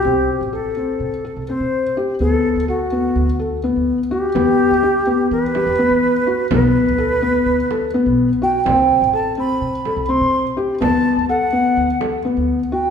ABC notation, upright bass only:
X:1
M:9/8
L:1/16
Q:3/8=84
K:Clyd
V:1 name="Upright bass" clef=bass
C,,2 z A,,,4- A,,, C,3 C,, z C,2 z3 | D,,2 z D,,4- D,, D,,4- D,, D,,2 z3 | E,,2 z D,,4- D,, E,3 E,, z E,2 z3 | B,,,2 z D,,4- D,, D,,4- D,, B,,,2 z3 |
C,,2 z A,,,4- A,,, C,3 C,, z C,2 z3 | D,,2 z D,,4- D,, D,,4- D,, D,,2 z3 |]